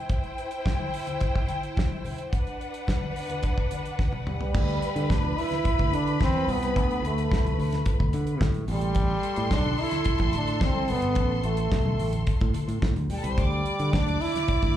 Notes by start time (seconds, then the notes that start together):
Already playing: E4 C5 G5
0.09 kick, closed hi-hat, muted conga
0.24 closed hi-hat, muted conga
0.38 closed hi-hat
0.51 closed hi-hat
0.66 kick, snare, muted conga
0.79 high conga
0.94 open hi-hat
1.07 closed hi-hat, high conga
1.20 kick, closed hi-hat, muted conga, low conga
1.35 kick, muted conga
1.48 closed hi-hat, high conga
1.63 closed hi-hat
1.76 kick, snare, high conga
1.90 muted conga
2.05 open hi-hat, high conga, low conga
2.18 closed hi-hat
2.33 D4 B4 F#5, kick, closed hi-hat, muted conga
2.46 closed hi-hat, muted conga
2.61 closed hi-hat
2.74 closed hi-hat
2.87 kick, snare, muted conga
3.01 high conga
3.16 open hi-hat
3.29 closed hi-hat, high conga
3.42 kick, closed hi-hat, low conga
3.57 kick, muted conga
3.71 closed hi-hat, high conga
3.85 closed hi-hat
3.99 kick, snare, muted conga, high conga
4.13 high tom, muted conga
4.27 G3, mid tom, high conga, low conga
4.41 floor tom
4.54 D2 B4 B5, kick, crash
4.68 closed hi-hat
4.82 closed hi-hat
4.96 D3, closed hi-hat
5.10 D2 D4, kick, snare
5.23 muted conga, high conga, low conga
5.38 E4, open hi-hat
5.51 snare, closed hi-hat, high conga
5.64 kick, closed hi-hat, muted conga, low conga
5.79 D2, kick, closed hi-hat
5.92 D3 D4, closed hi-hat, high conga
6.07 closed hi-hat
6.20 E2 C4, kick, snare, muted conga, high conga
6.34 muted conga
6.48 C2 B3, open hi-hat, low conga
6.63 closed hi-hat
6.76 D2, kick, closed hi-hat, muted conga
6.89 closed hi-hat, muted conga
7.02 D2, closed hi-hat
7.07 A3
7.18 closed hi-hat
7.31 C2, kick, snare
7.45 closed hi-hat, muted conga, high conga, low conga
7.58 D2, open hi-hat
7.72 snare, closed hi-hat, high conga
7.86 kick, closed hi-hat, low conga
7.99 D2, kick, muted conga
8.13 D3, closed hi-hat, high conga
8.27 closed hi-hat
8.41 A2, kick, snare, muted conga, high conga
8.54 closed hi-hat, muted conga
8.68 A1 A4 C6, open hi-hat, low conga
8.73 G3
8.81 closed hi-hat
8.95 kick, closed hi-hat
9.10 muted conga
9.23 closed hi-hat
9.36 A2, closed hi-hat
9.51 B1, kick, snare
9.55 D4
9.64 high conga, low conga
9.78 E4, open hi-hat
9.91 snare, closed hi-hat, high conga
10.04 kick, closed hi-hat, muted conga, low conga
10.18 A1, kick, closed hi-hat, muted conga
10.33 A2, closed hi-hat, high conga
10.37 D4
10.47 closed hi-hat
10.61 C2 C4, kick, snare, muted conga, high conga
10.88 G1 B3, open hi-hat, low conga
11.02 closed hi-hat
11.15 A1, kick, closed hi-hat
11.43 A1 A3, closed hi-hat
11.57 closed hi-hat
11.72 B1, kick, snare
11.85 muted conga, high conga, low conga
11.99 A1, open hi-hat
12.13 closed hi-hat, high conga
12.27 kick, closed hi-hat, low conga
12.40 A2, kick, closed hi-hat, muted conga
12.54 closed hi-hat, high conga
12.68 A2, closed hi-hat
12.82 A2, kick, snare, muted conga, high conga
12.96 D2, closed hi-hat
13.10 G3 G4 G5, open hi-hat, high conga, low conga
13.17 A4 A5
13.24 C2 B4 B5, closed hi-hat
13.30 C5 C6
13.38 D2 D5 D6, kick, closed hi-hat
13.52 muted conga
13.66 closed hi-hat
13.80 D3, closed hi-hat
13.93 D2 D4, kick, snare, muted conga
14.07 closed hi-hat, muted conga, high conga, low conga
14.21 E4, open hi-hat
14.34 snare, closed hi-hat, high conga
14.48 kick, closed hi-hat, muted conga, low conga
14.62 D2, kick, closed hi-hat